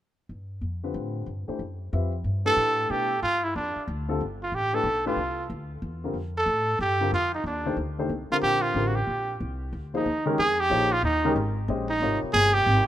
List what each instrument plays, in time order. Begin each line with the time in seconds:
0.29 upright bass G2
0.61 upright bass F2
0.83 grand piano D3 G3 C4 F4 B4
0.94 upright bass A2
1.26 upright bass G2
1.48 grand piano E3 A3 D4 G4 C5, muted upright bass stroke
1.59 upright bass F#2
1.92 upright bass F2, grand piano G3 C4 F4 B4 E5
2.24 upright bass G2
2.45 grand piano E3 A3 D4 G4 B4, trumpet A4
2.56 upright bass A2
2.90 upright bass B2, grand piano E3 A3 D4 G4 B4, trumpet G4
3.22 upright bass G2, trumpet F4
3.44 trumpet E4
3.55 upright bass F2, trumpet D4
3.76 muted upright bass stroke
3.88 upright bass D2
4.08 grand piano D3 G3 C4 F4 A4
4.21 upright bass G1
4.43 trumpet F4
4.52 upright bass A1, trumpet G4
4.73 grand piano E3 A3 D4 G4 B4, trumpet A4
4.83 upright bass B1
5.06 grand piano E3 A3 D4 G4 B4, trumpet F4
5.16 upright bass C2
5.50 upright bass D2
5.82 upright bass E2
6.04 grand piano D3 G3 C4 F4 A#4
6.13 upright bass F2
6.38 trumpet A4
6.46 upright bass A2
6.79 upright bass G2, trumpet G4
7.00 grand piano D3 G3 C4 F4 A#4
7.12 upright bass F2, trumpet F4
7.35 trumpet D#4
7.44 upright bass D#2, trumpet D4
7.65 grand piano D#3 A3 D4 G4 C5
7.77 upright bass D2
7.98 grand piano D#3 A3 D4 G4 C5
8.09 upright bass C2
8.31 grand piano D3 G3 C4 F4 A#4, trumpet F4, muted upright bass stroke
8.43 upright bass A#1, trumpet G4
8.62 trumpet F4
8.75 upright bass A1, grand piano D3 G3 C4 F4 A#4
8.88 trumpet F#4
8.95 trumpet G4
9.07 upright bass A#1
9.40 upright bass C2
9.73 upright bass D2
9.94 grand piano F3 A#3 D#4 G#4 C5, trumpet D#4
10.06 upright bass D#2
10.26 grand piano D#3 G#3 C#4 G4 A#4
10.38 upright bass F2, trumpet G#4
10.60 trumpet G4
10.70 upright bass A#1, grand piano F3 A#3 D#4 G#4 C#5
10.92 trumpet F4
11.03 upright bass D#2, trumpet D#4
11.25 grand piano D#3 G#3 C#4 G4 A#4
11.36 upright bass G#1
11.68 upright bass A#1, grand piano G#3 C#4 G4 C5 D#5
11.90 trumpet D#4
12.00 upright bass G#1, grand piano C3 G3 F4 A#4 C#5
12.23 muted upright bass stroke
12.33 upright bass G1, trumpet G#4
12.54 trumpet G4
12.66 upright bass G#1